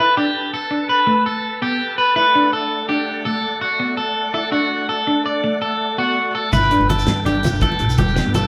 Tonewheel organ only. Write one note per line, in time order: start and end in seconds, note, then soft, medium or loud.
0.00 8.47 A4 medium
0.00 2.12 B4 medium
0.00 2.14 A5 medium
2.17 6.49 A3 medium
2.17 6.49 D5 medium
2.17 6.49 F#5 medium
6.53 8.47 B4 medium
6.53 8.47 G5 medium